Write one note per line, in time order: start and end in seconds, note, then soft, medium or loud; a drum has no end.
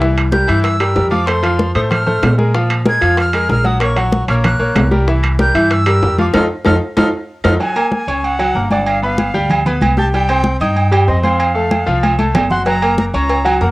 0.00 0.43 C2 loud
0.00 0.27 E3 medium
0.00 0.27 E4 medium
0.00 0.27 E5 medium
0.00 high bongo medium
0.00 high conga soft
0.17 high bongo soft
0.17 high conga soft
0.17 high timbale loud
0.32 0.46 G3 medium
0.32 0.46 G4 medium
0.32 0.46 A#4 medium
0.32 0.62 G6 loud
0.32 high bongo medium
0.32 high conga loud
0.48 0.93 G2 medium
0.48 0.74 E3 loud
0.48 0.74 E4 loud
0.48 0.74 E5 medium
0.48 high timbale medium
0.63 1.08 E6 loud
0.63 high bongo medium
0.63 high conga soft
0.63 high timbale medium
0.80 0.93 G3 medium
0.80 0.93 G4 medium
0.80 0.94 A#4 medium
0.80 high bongo soft
0.80 high conga soft
0.80 high timbale loud
0.96 1.70 F2 loud
0.96 1.09 G3 medium
0.96 1.09 G4 medium
0.96 1.09 A#4 medium
0.96 high bongo soft
0.96 low bongo medium
0.96 high conga soft
1.10 1.24 F3 medium
1.10 1.24 F4 medium
1.10 1.25 F5 medium
1.10 1.28 D6 medium
1.10 high bongo soft
1.10 high conga medium
1.26 1.40 A3 medium
1.26 1.41 A4 medium
1.26 1.41 C5 medium
1.26 1.74 C6 medium
1.26 high bongo medium
1.26 high conga soft
1.26 high timbale medium
1.43 1.69 F3 medium
1.43 1.69 F4 medium
1.43 1.70 F5 medium
1.43 high bongo soft
1.43 high conga soft
1.43 high timbale medium
1.59 high bongo medium
1.59 high conga medium
1.75 2.19 A2 medium
1.75 2.01 A3 medium
1.75 2.01 A4 medium
1.75 2.01 C5 medium
1.75 1.81 D#6 medium
1.75 high conga soft
1.75 high timbale medium
1.90 2.35 F6 medium
1.90 high bongo medium
1.90 high conga soft
1.90 low conga medium
1.90 high timbale loud
2.06 2.33 A3 medium
2.06 2.33 A4 medium
2.06 2.33 C5 medium
2.06 high bongo soft
2.06 high conga soft
2.06 low conga medium
2.23 2.96 A#2 loud
2.23 high bongo soft
2.23 low bongo medium
2.23 high conga medium
2.23 high timbale loud
2.23 low timbale medium
2.38 2.51 G#3 medium
2.38 2.52 G#4 medium
2.38 2.52 A#4 medium
2.38 high bongo soft
2.38 high conga medium
2.54 2.80 F3 medium
2.54 2.80 F4 medium
2.54 2.80 F5 medium
2.54 high bongo medium
2.70 high bongo soft
2.70 high conga soft
2.70 high timbale loud
2.70 claves medium
2.85 2.99 G#3 medium
2.85 2.99 G#4 medium
2.85 2.99 A#4 medium
2.85 3.17 G#6 loud
2.85 high bongo medium
2.85 high conga loud
3.01 3.46 F2 medium
3.01 3.27 F3 medium
3.01 3.27 F4 loud
3.01 3.28 F5 medium
3.01 high timbale medium
3.17 3.48 F6 loud
3.17 high bongo medium
3.17 high conga soft
3.17 high timbale medium
3.33 3.46 G#3 medium
3.33 3.46 G#4 medium
3.33 3.47 A#4 medium
3.33 high bongo soft
3.33 high conga soft
3.33 high timbale medium
3.33 claves medium
3.49 4.23 A#1 loud
3.49 3.62 G#3 medium
3.49 3.62 G#4 medium
3.49 3.63 A#4 medium
3.49 3.68 F6 medium
3.49 high bongo soft
3.49 low bongo medium
3.49 high conga soft
3.64 3.78 F#3 medium
3.64 3.78 F#4 medium
3.64 3.78 F#5 medium
3.64 3.81 D#6 medium
3.64 high bongo soft
3.64 high conga medium
3.80 3.94 A#3 medium
3.80 3.94 A#4 medium
3.80 3.94 C#5 medium
3.80 4.25 C#6 medium
3.80 high bongo medium
3.80 high timbale medium
3.80 claves medium
3.96 4.22 F#3 medium
3.96 4.22 F#4 medium
3.96 4.23 F#5 medium
3.96 high bongo soft
3.96 high conga soft
3.96 high timbale medium
4.12 high bongo medium
4.12 high conga loud
4.28 4.58 A#1 loud
4.28 4.54 A#3 medium
4.28 4.54 A#4 medium
4.28 4.54 C#5 medium
4.28 4.34 F6 medium
4.28 high conga soft
4.28 high timbale medium
4.44 4.89 F#6 medium
4.44 high bongo medium
4.44 high conga soft
4.44 low conga medium
4.44 high timbale loud
4.44 claves medium
4.59 4.75 A#1 medium
4.59 4.85 A#3 medium
4.59 4.86 A#4 medium
4.59 4.86 C#5 medium
4.59 high bongo soft
4.59 high conga soft
4.75 5.49 C2 loud
4.75 high bongo soft
4.75 low bongo medium
4.75 high conga medium
4.75 high timbale medium
4.75 low timbale medium
4.75 claves medium
4.91 5.04 G3 medium
4.91 5.04 G4 medium
4.91 5.05 A#4 medium
4.91 high bongo soft
4.91 high conga medium
5.07 5.33 E3 medium
5.07 5.34 E4 medium
5.07 5.34 E5 medium
5.07 high bongo medium
5.07 high conga soft
5.23 high bongo soft
5.23 high conga soft
5.23 high timbale loud
5.23 claves medium
5.39 5.52 G3 medium
5.39 5.52 G4 medium
5.39 5.52 A#4 medium
5.39 5.74 G6 loud
5.39 high bongo medium
5.39 high conga loud
5.54 5.99 G2 medium
5.54 5.81 E3 loud
5.54 5.81 E4 medium
5.54 5.81 E5 loud
5.54 high timbale medium
5.71 6.19 E6 loud
5.71 high bongo medium
5.71 high conga soft
5.71 high timbale medium
5.86 5.99 G3 medium
5.86 5.99 G4 medium
5.86 6.00 A#4 medium
5.86 high bongo soft
5.86 high conga soft
5.86 high timbale loud
5.86 claves medium
6.02 6.31 F2 loud
6.02 6.16 G3 medium
6.02 6.16 G4 medium
6.02 6.16 A#4 medium
6.02 high bongo soft
6.02 low bongo medium
6.02 high conga soft
6.18 6.31 F3 medium
6.18 6.31 F4 medium
6.18 6.32 F5 medium
6.18 6.27 D6 medium
6.18 high bongo soft
6.18 high conga medium
6.34 6.46 F2 loud
6.34 6.44 D#4 medium
6.34 6.44 F4 medium
6.34 6.44 A4 loud
6.34 6.44 F6 loud
6.34 high bongo loud
6.34 high conga loud
6.34 high timbale loud
6.34 claves medium
6.65 6.77 F2 loud
6.65 6.76 D#4 medium
6.65 6.76 F4 medium
6.65 6.75 A4 loud
6.65 6.76 F6 medium
6.65 high bongo loud
6.65 high conga loud
6.65 high timbale loud
6.65 claves loud
6.97 7.09 F2 medium
6.97 7.07 D#4 loud
6.97 7.07 F4 loud
6.97 7.07 A4 loud
6.97 7.07 F6 medium
6.97 high bongo loud
6.97 high conga loud
6.97 high timbale loud
6.97 claves medium
7.44 7.56 F2 loud
7.44 7.54 D#4 medium
7.44 7.55 F4 medium
7.44 7.54 A4 medium
7.44 7.54 F6 medium
7.44 high bongo loud
7.44 high conga medium
7.44 high timbale medium
7.44 claves loud
7.60 7.73 F#3 medium
7.60 7.73 F#4 medium
7.60 7.74 F#5 medium
7.60 8.26 G#5 loud
7.60 high conga soft
7.60 low agogo medium
7.76 8.02 A#3 medium
7.76 8.02 A#4 medium
7.76 8.02 A#5 medium
7.76 high conga soft
7.76 low agogo loud
7.76 claves medium
7.92 high conga loud
8.07 8.52 C#2 medium
8.07 8.34 C#4 medium
8.07 8.34 C#5 medium
8.07 8.34 C#6 medium
8.07 low agogo medium
8.23 8.71 F#5 loud
8.23 high conga soft
8.23 low agogo medium
8.39 8.52 F#3 medium
8.39 8.53 F#4 medium
8.39 8.52 F#5 medium
8.39 high conga soft
8.39 low agogo loud
8.39 claves medium
8.55 9.28 G1 loud
8.55 8.68 A#3 medium
8.55 8.68 A#4 medium
8.55 8.68 A#5 medium
8.55 high conga soft
8.71 8.97 D4 medium
8.71 8.98 D5 medium
8.71 8.89 F#5 medium
8.71 8.98 D6 medium
8.71 high conga medium
8.71 low agogo medium
8.86 9.03 F5 medium
8.86 high conga soft
8.86 low agogo loud
8.86 claves medium
9.02 9.28 B3 medium
9.02 9.29 B4 medium
9.02 9.63 F5 medium
9.02 9.29 B5 medium
9.02 high conga soft
9.18 high conga loud
9.18 low agogo medium
9.34 9.78 D2 loud
9.34 9.60 G3 loud
9.34 9.60 G4 medium
9.34 9.60 G5 loud
9.34 high conga soft
9.50 high conga soft
9.50 low conga medium
9.50 low agogo loud
9.50 claves medium
9.66 9.92 B3 medium
9.66 9.92 B4 medium
9.66 9.92 B5 medium
9.66 high conga soft
9.66 low conga medium
9.66 low agogo medium
9.81 10.55 C2 medium
9.81 high conga medium
9.81 low agogo loud
9.81 claves medium
9.97 10.11 G4 medium
9.97 10.11 G5 medium
9.97 10.12 A5 loud
9.97 10.11 G6 medium
9.97 high conga medium
10.13 10.27 G3 medium
10.13 10.27 G4 medium
10.13 10.57 G5 loud
10.13 10.27 G5 medium
10.13 high conga soft
10.13 low agogo medium
10.28 10.56 C4 medium
10.28 10.55 C5 medium
10.28 10.56 C6 medium
10.28 high conga soft
10.28 low agogo loud
10.28 claves medium
10.44 high conga loud
10.60 11.05 G2 medium
10.60 10.87 D#4 medium
10.60 10.87 D#5 medium
10.60 11.05 G5 medium
10.60 10.87 D#6 medium
10.60 low agogo medium
10.76 high conga soft
10.76 low agogo medium
10.92 11.05 G3 medium
10.92 11.05 G4 medium
10.92 11.05 G5 medium
10.92 high conga soft
10.92 low agogo loud
10.92 claves medium
11.08 11.82 F2 medium
11.08 11.21 C4 medium
11.08 11.21 C5 medium
11.08 11.22 D#5 medium
11.08 11.21 C6 medium
11.08 high conga soft
11.23 11.50 C4 medium
11.23 11.50 C5 medium
11.23 12.14 F5 medium
11.23 11.50 C6 medium
11.23 high conga medium
11.23 low agogo medium
11.39 high conga soft
11.39 low agogo loud
11.39 claves medium
11.54 11.81 A3 medium
11.54 11.81 A4 medium
11.54 11.81 A5 medium
11.54 high conga soft
11.71 high conga loud
11.71 low agogo medium
11.86 12.31 C2 loud
11.86 12.13 F3 loud
11.86 12.13 F4 medium
11.86 12.13 F5 medium
11.86 high conga soft
12.03 high conga medium
12.03 low agogo loud
12.03 claves medium
12.18 12.45 A3 medium
12.18 12.45 A4 medium
12.18 12.45 A5 medium
12.18 high conga medium
12.18 low agogo medium
12.35 13.08 F#1 medium
12.35 low conga loud
12.35 low timbale medium
12.35 low agogo loud
12.35 claves medium
12.50 12.64 F#4 medium
12.50 12.64 F#5 medium
12.50 12.65 C6 loud
12.50 12.64 F#6 medium
12.50 low conga medium
12.66 12.79 F#3 medium
12.66 12.80 F#4 medium
12.66 12.80 F#5 medium
12.66 12.96 A#5 loud
12.66 cowbell loud
12.66 high conga soft
12.66 low agogo medium
12.82 13.08 A#3 medium
12.82 13.08 A#4 medium
12.82 13.08 A#5 medium
12.82 high conga soft
12.82 low agogo loud
12.82 claves medium
12.98 13.05 A#5 medium
12.98 cowbell medium
12.98 high conga loud
13.14 13.58 C#2 medium
13.14 13.40 C#4 medium
13.14 13.40 C#5 medium
13.14 13.58 A#5 loud
13.14 13.40 C#6 medium
13.14 low agogo medium
13.29 cowbell loud
13.29 high conga soft
13.29 low agogo medium
13.45 13.58 F#3 medium
13.45 13.58 F#4 medium
13.45 13.58 F#5 medium
13.45 high conga soft
13.45 low agogo loud
13.45 claves medium
13.61 13.71 F2 loud
13.61 13.71 A#3 medium
13.61 13.71 A#4 medium
13.61 13.68 F#5 medium
13.61 13.71 A#5 medium
13.61 cowbell medium
13.61 high conga soft